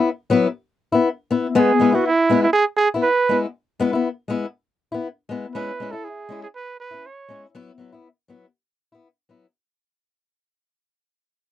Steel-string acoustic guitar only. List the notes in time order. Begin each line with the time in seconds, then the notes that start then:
0.30 F#3 B3 E4
0.92 B3 E4
1.31 B3 E4
1.55 G#3 B3, muted steel-string acoustic guitar stroke
1.80 G#3 B3 E4
1.92 B3 E4
2.30 G#3 B3 E4
2.94 B3 E4
3.29 G#3 B3 E4
3.80 G#3 B3 E4
3.93 B3 E4
4.28 G#3 B3 E4
4.92 B3 E4
5.29 G#3 B3 E4
5.55 G#3 C#4 E4
5.80 G#3 C#4 E4
5.93 E4
6.29 G#3 C#4 E4
6.91 C#4 E4
7.28 G#3 C#4 E4
7.55 F#3 B3 E4
7.78 F#3 B3 E4
7.92 B3 E4
8.28 F#3 B3 E4
8.92 B3 E4
9.29 F#3 B3 E4